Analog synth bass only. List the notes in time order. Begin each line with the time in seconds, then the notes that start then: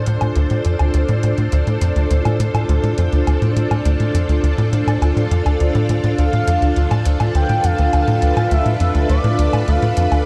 0.07 A2
0.22 A2
0.36 D2
0.51 A2
0.66 F2
0.80 D2
0.94 D2
1.09 A2
1.24 A2
1.38 A2
1.53 D2
1.67 A2
1.81 F2
1.96 D2
2.11 D2
2.25 A2
2.40 A2
2.54 A2
2.69 D2
2.83 A2
2.98 F2
3.13 D2
3.27 D2
3.42 A2
3.56 A2
3.71 A2
3.85 D2
4.00 A2
4.14 F2
4.29 D2
4.43 D2
4.58 A2
4.73 A2
4.87 A2
5.02 D2
5.17 A2
5.31 F2
5.46 D2
5.61 D2
5.75 A2
5.89 A2
6.04 A2
6.18 D2
6.33 A2
6.48 F2
6.62 D2
6.77 D2
6.91 A2
7.06 D2
7.20 A2
7.35 D2
7.50 A2
7.64 F2
7.79 D2
7.94 D2
8.08 A2
8.23 D2
8.37 A2
8.51 D2
8.66 A2
8.80 F2
8.95 D2
9.09 D2
9.24 A2
9.39 D2
9.53 A2
9.68 D2
9.82 A2
9.97 F2
10.12 D2